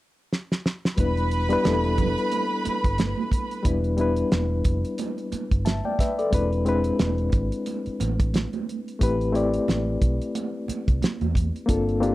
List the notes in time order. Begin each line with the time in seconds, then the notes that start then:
0.33 snare
0.52 snare
0.66 snare
0.85 snare
0.96 E1 G3 B3 D4 E4 B4 B5, kick, closed hi-hat, muted conga
1.17 closed hi-hat
1.31 closed hi-hat
1.49 G3 B3 D4 E4 B4, closed hi-hat
1.63 E1 G3 B3 D4 E4, snare, closed hi-hat, high conga
1.67 A4
1.84 closed hi-hat
1.98 F1, kick, closed hi-hat, low conga
2.18 closed hi-hat
2.32 closed hi-hat, muted conga
2.65 muted fingered electric bass stroke, closed hi-hat, muted conga
2.84 G1, kick, closed hi-hat
2.98 snare, closed hi-hat, high conga
3.17 high conga
3.32 kick, closed hi-hat
3.51 closed hi-hat
3.63 E1 G3 B3 D4 E4 B4, kick, closed hi-hat, muted conga
3.84 closed hi-hat
3.97 G3 B3 D4 E4, closed hi-hat
4.01 B4
4.16 closed hi-hat
4.32 E1, snare, closed hi-hat, high conga
4.65 F1, kick, closed hi-hat
4.85 closed hi-hat
4.98 closed hi-hat, muted conga
5.18 closed hi-hat
5.32 muted fingered electric bass stroke, closed hi-hat, muted conga
5.51 G1, kick, closed hi-hat
5.65 E5 A5, snare, closed hi-hat, high conga
5.85 D5 G5, high conga
5.99 B4 E5, kick, snare, closed hi-hat
6.18 A4 D5, closed hi-hat
6.31 E1 G#3 C4 D4 E4 B4, kick, closed hi-hat, muted conga
6.53 closed hi-hat
6.65 G#3 C4 D4 E4 B4, closed hi-hat
6.84 closed hi-hat
6.99 E1, snare, closed hi-hat, high conga
7.18 closed hi-hat
7.32 G#1, kick, closed hi-hat
7.52 closed hi-hat
7.66 closed hi-hat, muted conga
7.86 muted fingered electric bass stroke, closed hi-hat
8.00 A1, closed hi-hat, muted conga
8.20 kick, closed hi-hat
8.34 snare, closed hi-hat, high conga
8.53 closed hi-hat, high conga
8.69 closed hi-hat
8.88 closed hi-hat
8.99 A1 A3 C4 E4 G4, kick, closed hi-hat
9.03 B4
9.21 closed hi-hat
9.32 A3 C4 E4 G4 D5, closed hi-hat
9.54 closed hi-hat
9.68 A1, snare, closed hi-hat, high conga
10.02 B1, kick, closed hi-hat
10.22 closed hi-hat
10.35 closed hi-hat, muted conga
10.68 muted fingered electric bass stroke, closed hi-hat, muted conga
10.88 C2, kick, closed hi-hat
11.02 muted fingered electric bass stroke, snare, closed hi-hat, high conga
11.21 E2, closed hi-hat, high conga
11.35 kick, closed hi-hat
11.56 closed hi-hat
11.66 G1 A#3 C4 D4 F4, kick, closed hi-hat, muted conga
11.70 A4
11.89 closed hi-hat
12.00 A#3 C4 D4 F4 G4, closed hi-hat